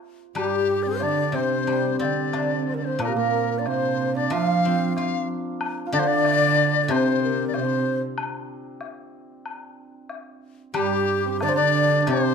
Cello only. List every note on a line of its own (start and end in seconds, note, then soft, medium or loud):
0.37 1.03 G2 medium
1.02 1.36 D3 medium
1.35 1.99 C3 medium
2.00 3.02 D3 medium
3.00 3.14 A#2 medium
3.15 3.67 A#2 medium
3.66 4.34 C3 medium
4.33 5.30 F3 medium
5.94 6.91 D3 loud
6.89 7.53 C3 medium
7.54 7.98 C3 medium
10.76 11.44 G2 medium
11.43 11.55 D3 medium
11.55 12.10 D3 loud
12.08 12.35 C3 medium